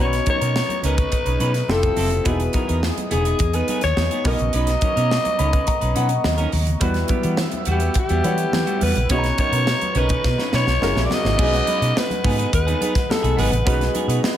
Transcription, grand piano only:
Already playing: B3 C#4
0.00 D#4 F#4 A#5
1.69 C4 E4 F4 G4 A4
2.25 B3 D#4 E4 F#4 G#4
4.24 B3 C#4 D#4 F#4 A#4
5.39 B5
5.67 A#5
5.96 F#5
6.25 D#5
6.81 G3 B3 E4 F#4 B4
8.24 G3 B3 E4 C#5 F#5
9.10 B3 C#4 D#4 F#4 G#4
9.18 A#5
10.81 G#3 C#4 E4 F#4 A#4
11.38 G#3 C#4 D#4 F#4 B4
13.65 G#3 C#4 D#4 F#4 B4

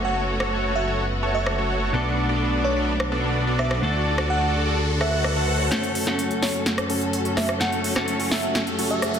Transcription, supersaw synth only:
0.05 F#4 A4 C#5
0.40 F#4 A4 C#5
0.87 F#4 A4 C#5
1.23 F#4 A4 C#5
1.58 F#4 A4 C#5
1.94 B3 D4 F#4 A4 D5
2.29 B3 D4 F#4 A4 D5
2.76 B3 D4 F#4 A4 D5
3.12 B3 D4 F#4 A4 D5
3.47 B3 D4 F#4 A4 D5
3.83 F#4 A4 D5
4.18 F#4 A4 D5
4.65 F#4 A4 D5
5.01 F#4 A4 F#5
5.36 F#4 A4 F#5
5.72 C#4 F#4
6.07 C#4 F#4 A4
6.54 C#4 F#4 A4
6.90 C#4 F#4 A4
7.25 C#4 F#4 A4
7.61 C#4 F#4 A4
7.96 C#4 F#4 A4
8.43 C#4 F#4 A4
8.79 C#4 F#4 A4
9.14 C#4 F#4 A4

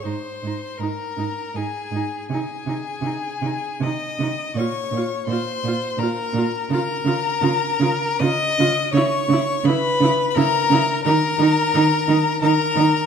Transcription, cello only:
0.05 G#2
0.43 G#2
0.79 G#2
1.17 G#2
1.54 G#2
1.91 G#2
2.30 C3
2.66 C3
3.01 C3
3.42 C3
3.81 C3
4.19 C3
4.55 A#2
4.91 A#2
5.27 A#2
5.64 A#2
5.98 A#2
6.33 A#2
6.70 C#3
7.05 C#3
7.41 C#3
7.80 C#3
8.20 C#3
8.59 C#3
8.93 C#3
9.29 C#3
9.64 C#3
10.00 C#3
10.36 C#3
10.70 C#3
11.05 D#3
11.38 D#3
11.74 D#3
12.08 D#3
12.42 D#3
12.76 D#3

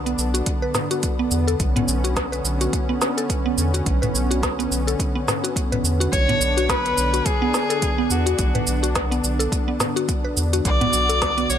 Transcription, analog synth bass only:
Already playing: B1
0.18 B1
1.31 E2
1.60 B1
1.88 B1
2.44 B1
3.58 E2
3.86 B1
4.14 B1
4.71 B1
5.84 E2
6.13 B1
6.41 B1
6.98 B1
8.11 E2
8.39 B1
8.67 B1
9.24 B1
10.37 E2
10.65 B1
10.94 B1
11.50 B1

